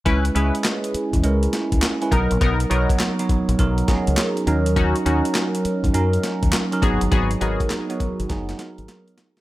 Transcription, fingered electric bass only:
X:1
M:4/4
L:1/16
Q:"Swing 16ths" 1/4=102
K:C#dor
V:1 name="Fingered electric bass" clef=bass
C,,2 C,, z4 E,, C,,2 z C,, z2 B,,, A,,, | B,,,2 B,,, z4 A,,, B,,,2 z C,, z2 D,,2- | D,,2 D,, z4 D,, F,,2 z D,, z2 G,,, =G,,, | G,,,2 G,,, z4 G,,, F,,,2 z G,,, z4 |]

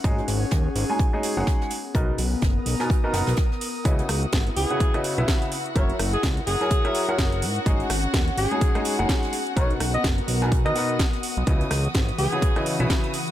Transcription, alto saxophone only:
X:1
M:4/4
L:1/16
Q:"Swing 16ths" 1/4=126
K:C#dor
V:1 name="Alto saxophone"
z16 | z16 | z6 G4 z6 | c z2 G z2 G6 z4 |
z6 G4 z6 | c z2 d z4 z d3 z4 | z6 G4 z6 |]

